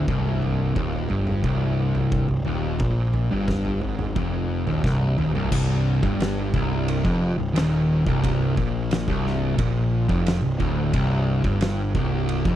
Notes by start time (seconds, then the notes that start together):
0.08 C1 C2, kick, floor tom
0.42 floor tom
0.75 D#1 D#2, kick, mid tom
0.93 floor tom
1.10 G1 G2, floor tom
1.27 mid tom
1.43 C1 C2, kick, floor tom
1.95 floor tom
2.12 kick, mid tom
2.29 C1 C2, floor tom
2.45 D#1 D#2, floor tom
2.79 A#1 A#2, kick, floor tom
3.14 floor tom
3.31 G1 G2
3.48 kick, snare, mid tom
3.65 floor tom
3.81 G#1 G#2, floor tom
3.99 mid tom
4.15 F1 F2, kick, floor tom
4.67 D#1 D#2, floor tom, mid tom
4.84 C1 C2, kick, snare
5.01 high tom
5.18 D#1 D#2, mid tom
5.35 C1 C2, floor tom
5.52 C1 C2, kick, crash
6.03 G1 G2, kick
6.20 snare, ride bell
6.54 C1 C2, kick
6.88 ride bell
7.05 F1 F2, kick
7.38 C1 C2
7.54 D#1 D#2, snare, ride bell
8.06 C1 C2, kick
8.24 kick, ride bell
8.57 A#1 A#2, kick
8.91 snare, ride bell
9.08 C1 C2, kick
9.27 snare
9.57 A#1 A#2, kick, ride bell
10.08 F1 F2, kick
10.26 snare, ride bell
10.43 C1 C2
10.59 D1 D2, kick
10.94 C1 C2, kick, ride bell
11.44 G1 G2, kick
11.61 snare, ride bell
11.95 C1 C2, kick
12.29 ride bell
12.45 F1 F2, kick